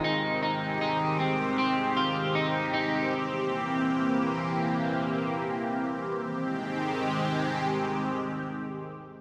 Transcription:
<<
  \new Staff \with { instrumentName = "Clean electric guitar" } { \time 4/4 \key aes \major \tempo 4 = 78 ees'8 ees'8 ees'8 c'8 c'8 f'8 ees'8 ees'8 | r1 | r1 | }
  \new Staff \with { instrumentName = "Analog synth pad" } { \time 4/4 \key aes \major << { <c' g'>1~ | <c' g'>1 | <ees aes c' g'>1 | } \\ { <ees aes>1 | <e bes>1 | r1 | } >> }
>>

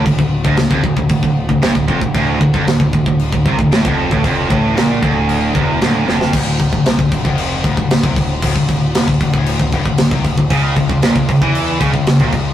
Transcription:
<<
  \new Staff \with { instrumentName = "Distorted electric guitar" } { \clef bass \time 4/4 \key d \minor \tempo 4 = 115 d,16 d,8 d,16 d,16 f,16 d,16 d,16 d,16 d,8 d,16 g,16 d,16 f,16 d,16 | d,8 d,16 f,16 d,16 d,16 d,16 d,8 d,16 c16 d,16 a,16 f,8 a,16 | f,8 a,8 bes,8 d,4 e,8 d,8 f,8 | r1 |
r1 | cis8 cis16 cis16 ais,16 cis16 cis16 e8. cis16 cis16 cis16 ais,16 cis8 | }
  \new Staff \with { instrumentName = "Distorted electric guitar" } { \clef bass \time 4/4 \key d \minor d,16 d,8 d,16 d,16 f,16 d,16 d,16 d,16 d,8 d,16 g,16 d,16 f,16 d,16 | d,8 d,16 f,16 d,16 d,16 d,16 d,8 d,16 c16 d,16 a,16 f,8 a,16 | f,8 a,8 bes,8 d,4 e,8 d,8 f,8 | d,8 d,16 d,16 c16 d,16 d,16 f,8. d,16 d,16 d,16 c16 d,8 |
d,16 d,16 d,8 e,16 d,16 d,16 d,8 d,16 g,16 d,16 d,16 c16 d,16 d,16 | cis8 cis16 cis16 ais,16 cis16 cis16 e8. cis16 cis16 cis16 ais,16 cis8 | }
  \new Staff \with { instrumentName = "Picked electric bass" } { \clef bass \time 4/4 \key d \minor d,,16 d,,8 d,,16 d,,16 f,,16 d,,16 d,,16 d,,16 d,,8 d,,16 g,,16 d,,16 f,,16 d,,16 | d,,8 d,,16 f,,16 d,,16 d,,16 d,,16 d,,8 d,,16 c,16 d,,16 a,,16 f,,8 a,,16 | f,,8 a,,8 bes,,8 d,,4 e,,8 d,,8 f,,8 | d,,8 d,,16 d,,16 c,16 d,,16 d,,16 f,,8. d,,16 d,,16 d,,16 c,16 d,,8 |
d,,16 d,,16 d,,8 e,,16 d,,16 d,,16 d,,8 d,,16 g,,16 d,,16 d,,16 c,16 d,,16 d,,16 | cis,8 cis,16 cis,16 ais,,16 cis,16 cis,16 e,8. cis,16 cis,16 cis,16 ais,,16 cis,8 | }
  \new DrumStaff \with { instrumentName = "Drums" } \drummode { \time 4/4 <cymc bd>16 bd8 bd16 <cymc sn>16 bd16 bd16 bd16 <cymc bd>16 bd8 bd16 <cymc sn>16 bd16 bd16 bd16 | <cymc bd>8 bd16 bd16 <cymc sn>16 bd16 bd16 bd16 cymc16 bd16 bd16 bd16 <cymc sn>16 bd8 bd16 | <cymc bd>8 bd8 <cymc sn>8 bd8 cymc8 bd8 <cymc sn>8 sn16 sn16 | <cymc bd>8 <cymc bd>16 bd16 <cymc sn>16 bd16 <cymc bd>16 bd16 cymc8 <cymc bd>16 bd16 <cymc sn>16 bd16 <cymc bd>8 |
<cymc bd>16 bd16 <cymc bd>8 <cymc sn>16 bd16 <cymc bd>16 bd16 cymc16 bd16 <cymc bd>16 bd16 <cymc sn>16 bd16 <cymc bd>16 bd16 | <cymc bd>8 <cymc bd>16 bd16 <cymc sn>16 bd16 <cymc bd>16 bd16 cymc8 <cymc bd>16 bd16 <cymc sn>16 bd16 <cymc bd>8 | }
>>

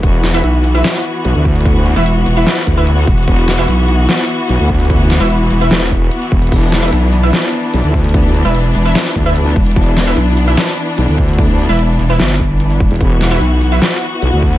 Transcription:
<<
  \new Staff \with { instrumentName = "Synth stab" } { \time 4/4 \key c \lydian \tempo 4 = 148 r8. <e' b' e''>16 r8. <e' b' e''>16 r2 | r8. <e' b' e''>16 r8. <e' b' e''>16 r8. <e' b' e''>16 r4 | r8. <e' b' e''>16 r2. | r8. <e' b' e''>16 r8. <e' b' e''>16 r2 |
r8. <e' b' e''>16 r8. <e' b' e''>16 r2 | r8. <e' b' e''>16 r8. <e' b' e''>16 r8. <e' b' e''>16 r4 | r8. <e' b' e''>16 r8. <e' b' e''>16 r2 | r8. <e' b' e''>16 r8. <e' b' e''>16 r2 |
r8. <e' b' e''>16 r8. <e' b' e''>16 r2 | }
  \new Staff \with { instrumentName = "String section" } { \time 4/4 \key c \lydian << { fis'1~ | fis'1~ | fis'1~ | fis'1 |
d'1~ | d'1~ | d'1~ | d'1 |
fis'1 | } \\ { <e b>1~ | <e b>1~ | <e b>1~ | <e b>1~ |
<e b>1~ | <e b>1~ | <e b>1~ | <e b>1~ |
<e b>1 | } >> }
  \new Staff \with { instrumentName = "Wobble bass" } { \clef bass \time 4/4 \key c \lydian e,,4 r2 b,,16 d,8.~ | d,8. r4. r16 d,4 r8 | e,,4 r2 b,,16 d,8.~ | d,8. r4 r16 e,,4 r8 e,,8 |
e,,4 r2 b,,16 d,8.~ | d,8. r4. r16 d,4 r8 | e,,4 r2 b,,16 d,8.~ | d,8. r2. e,,16 |
e,,4 r2 b,,16 d,8. | }
  \new Staff \with { instrumentName = "Wobble bass" } { \clef bass \time 4/4 \key c \lydian r4 b,,4 r2 | r8. e,,8. e,,8 r4. e,,8 | r4 b,,4 r2 | r8. e,,8. e,,8 r2 |
r4 b,,4 r2 | r8. e,,8. e,,8 r4. e,,8 | r4 b,,4 r2 | r8. e,,8. e,,8 g,,4. e,,16 r16 |
r4 b,,4 r2 | }
  \new DrumStaff \with { instrumentName = "Drums" } \drummode { \time 4/4 <hh bd>8 <hh sn>8 hh8 hho8 <hh sn>8 hh8 hh16 hh16 bd16 hh32 hh32 | <hh bd>8 hh8 hh8 hho8 <hh sn>8 <hh bd>8 hh16 hh16 bd16 hh32 hh32 | <hh bd>8 <hh sn>8 hh8 hho8 <hh sn>8 hh8 hh16 hh16 bd16 hh32 hh32 | <hh bd>8 <hh sn>16 hh16 hh8 hho8 <hh sn>8 <hh bd>8 hh16 hh16 bd16 hh32 hh32 |
<cymc hh bd>8 <hh sn>8 hh8 hho8 <hh sn>8 hh8 hh16 hh16 bd16 hh32 hh32 | <hh bd>8 hh8 hh8 hho8 <hh sn>8 <hh bd>8 hh16 hh16 bd16 hh32 hh32 | <hh bd>8 <hh sn>8 hh8 hho8 <hh sn>8 hh8 hh16 hh16 bd16 hh32 hh32 | <hh bd>8 hh16 hh16 hh8 hho8 <hh sn>8 <hh bd>8 hh16 hh16 bd16 hh32 hh32 |
<hh bd>8 <hh sn>8 hh8 hho8 <hh sn>8 hh8 hh16 hh16 bd16 hh16 | }
>>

